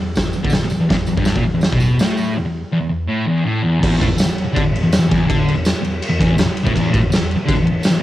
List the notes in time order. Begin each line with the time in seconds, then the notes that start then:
0.00 E2
0.15 kick, snare, open hi-hat, tambourine
0.25 E2
0.33 E2, tambourine
0.43 D3, kick
0.50 muted distorted electric guitar stroke, snare, open hi-hat, tambourine
0.64 E2
0.70 E2, tambourine
0.80 E2
0.89 E2, kick, snare, open hi-hat
0.98 E2
1.06 E2, tambourine
1.17 G2, kick
1.25 snare, open hi-hat, tambourine
1.36 A#2, kick
1.44 E2
1.54 E2
1.61 snare, open hi-hat, tambourine
1.72 B2, kick
1.80 tambourine
1.99 A2, snare, open hi-hat, tambourine
2.17 tambourine
2.37 E2
2.45 E2
2.72 E2
2.81 E2
2.89 E2
3.08 A2
3.27 E2
3.44 A2
3.63 E2
3.80 E2, kick, crash
3.98 A2, kick
4.03 ride
4.09 E2
4.16 muted distorted electric guitar stroke, snare, ride, tambourine
4.26 E2
4.38 ride
4.45 muted distorted electric guitar stroke
4.53 D3, kick, ride
4.63 muted distorted electric guitar stroke
4.73 E2, ride
4.83 E2
4.92 snare, ride, tambourine
4.99 E2
5.09 E2, kick, ride
5.26 D3
5.30 kick, ride
5.48 ride
5.55 E2
5.65 snare, ride, tambourine
5.82 E2, ride
6.02 ride
6.09 E2
6.19 E2, kick, ride
6.37 E2, snare, ride, tambourine
6.46 muted distorted electric guitar stroke
6.57 ride
6.64 A2, kick
6.73 E2, kick, ride
6.91 A2, kick, ride
7.00 E2
7.10 muted distorted electric guitar stroke, snare, ride, tambourine
7.17 E2
7.31 ride
7.36 muted distorted electric guitar stroke
7.46 D3, kick, ride
7.55 muted distorted electric guitar stroke
7.63 E2, ride
7.73 E2
7.83 snare, ride, tambourine
7.90 E2
7.99 E2